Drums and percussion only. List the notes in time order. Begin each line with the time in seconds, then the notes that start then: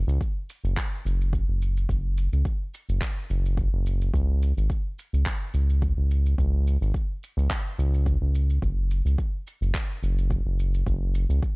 0.09 shaker
0.21 kick, shaker
0.50 shaker
0.65 shaker
0.77 kick, clap, shaker
1.06 shaker
1.21 shaker
1.33 kick, shaker
1.62 shaker
1.77 shaker
1.89 kick, shaker
2.18 shaker
2.33 shaker
2.45 kick, shaker
2.74 shaker
2.89 shaker
3.01 kick, clap, shaker
3.31 shaker
3.46 shaker
3.57 kick, shaker
3.87 shaker
4.02 shaker
4.14 kick, shaker
4.43 shaker
4.58 shaker
4.70 kick, shaker
4.99 shaker
5.14 shaker
5.26 kick, clap, shaker
5.54 shaker
5.70 shaker
5.82 kick, shaker
6.11 shaker
6.26 shaker
6.38 kick, shaker
6.67 shaker
6.82 shaker
6.94 kick, shaker
7.23 shaker
7.39 shaker
7.50 kick, clap, shaker
7.79 shaker
7.94 shaker
8.06 kick, shaker
8.35 shaker
8.50 shaker
8.62 kick, shaker
8.91 shaker
9.06 shaker
9.18 kick, shaker
9.47 shaker
9.63 shaker
9.74 kick, clap, shaker
10.03 shaker
10.18 shaker
10.30 kick, shaker
10.60 shaker
10.74 shaker
10.87 kick, shaker
11.15 shaker
11.30 shaker
11.43 kick, shaker